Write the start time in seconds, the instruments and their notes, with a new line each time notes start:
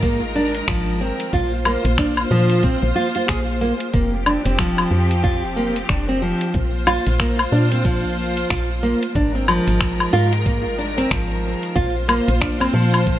Already playing: fm bass G#2, string section D#3 G#3 A#4
0.03 nylon-string guitar A#3, kick, closed hi-hat, cabasa
0.22 fm bass G#1, cabasa
0.36 nylon-string guitar D4
0.55 closed hi-hat, cabasa
0.68 fm bass G#1, nylon-string guitar F3, finger snap, kick, closed hi-hat, cabasa
0.88 cabasa
1.01 nylon-string guitar C4
1.20 closed hi-hat, cabasa
1.33 fm bass A#1, string section A#3 F4 C5, nylon-string guitar F4, kick, closed hi-hat, cabasa
1.53 cabasa
1.65 nylon-string guitar A#3, finger snap, low woodblock
1.85 fm bass A#1, closed hi-hat, cabasa
1.98 nylon-string guitar D4, finger snap, kick, closed hi-hat, cabasa
2.17 cabasa, low woodblock
2.31 fm bass A#2, nylon-string guitar F3
2.50 closed hi-hat, cabasa
2.63 nylon-string guitar C4, kick, closed hi-hat, cabasa
2.83 fm bass A#1, cabasa
2.96 nylon-string guitar F4
3.15 nylon-string guitar F4, closed hi-hat, cabasa
3.28 fm bass A#1, nylon-string guitar G#4, finger snap, kick, closed hi-hat, cabasa
3.49 cabasa
3.61 nylon-string guitar A#3
3.80 closed hi-hat, cabasa
3.93 fm bass F1, string section F3 C4 G4, nylon-string guitar A#3, kick, closed hi-hat, cabasa
4.14 cabasa
4.26 nylon-string guitar D4, low woodblock
4.46 fm bass F1, nylon-string guitar C4, closed hi-hat, cabasa
4.59 nylon-string guitar F3, finger snap, kick, closed hi-hat, cabasa
4.78 cabasa, low woodblock
4.91 fm bass F2
5.11 closed hi-hat, cabasa
5.24 nylon-string guitar F4, kick, closed hi-hat, cabasa
5.43 fm bass F1, cabasa
5.56 nylon-string guitar A#3
5.76 closed hi-hat, cabasa
5.89 fm bass F1, nylon-string guitar D4, finger snap, kick, closed hi-hat, cabasa
6.09 nylon-string guitar C4, cabasa
6.22 nylon-string guitar F3
6.41 closed hi-hat, cabasa
6.54 fm bass A#1, string section A#3 F4 C5, kick, closed hi-hat, cabasa
6.75 cabasa
6.87 nylon-string guitar F4, finger snap, low woodblock
7.07 fm bass A#1, closed hi-hat, cabasa
7.20 nylon-string guitar A#3, finger snap, kick, closed hi-hat, cabasa
7.39 cabasa, low woodblock
7.52 fm bass A#2, nylon-string guitar D4
7.71 nylon-string guitar C4, closed hi-hat, cabasa
7.85 nylon-string guitar F3, kick, closed hi-hat, cabasa
8.04 fm bass A#1, cabasa
8.37 closed hi-hat, cabasa
8.50 fm bass A#1, nylon-string guitar F4, finger snap, kick, closed hi-hat, cabasa
8.71 cabasa
8.83 nylon-string guitar A#3
9.03 closed hi-hat, cabasa
9.15 fm bass G#1, string section D#3 G#3 A#4, nylon-string guitar D4, kick, closed hi-hat, cabasa
9.35 nylon-string guitar C4, cabasa
9.48 nylon-string guitar F3, low woodblock
9.68 fm bass G#1, closed hi-hat, cabasa
9.81 finger snap, kick, closed hi-hat, cabasa
10.00 cabasa, low woodblock
10.13 fm bass G#2, nylon-string guitar F4
10.33 closed hi-hat, cabasa
10.46 nylon-string guitar A#3, kick, closed hi-hat, cabasa
10.66 fm bass G#1, cabasa
10.78 nylon-string guitar D4
10.98 nylon-string guitar C4, closed hi-hat, cabasa
11.11 fm bass G#1, nylon-string guitar F3, finger snap, kick, closed hi-hat, cabasa
11.32 cabasa
11.63 closed hi-hat, cabasa
11.76 fm bass A#1, string section A#3 F4 C5, nylon-string guitar F4, kick, closed hi-hat, cabasa
11.97 cabasa
12.08 nylon-string guitar A#3, finger snap, low woodblock
12.28 fm bass A#1, closed hi-hat, cabasa
12.41 nylon-string guitar D4, finger snap, kick, closed hi-hat, cabasa
12.60 nylon-string guitar C4, cabasa, low woodblock
12.74 fm bass A#2, nylon-string guitar F3
12.94 closed hi-hat, cabasa, low woodblock
13.07 kick, closed hi-hat, cabasa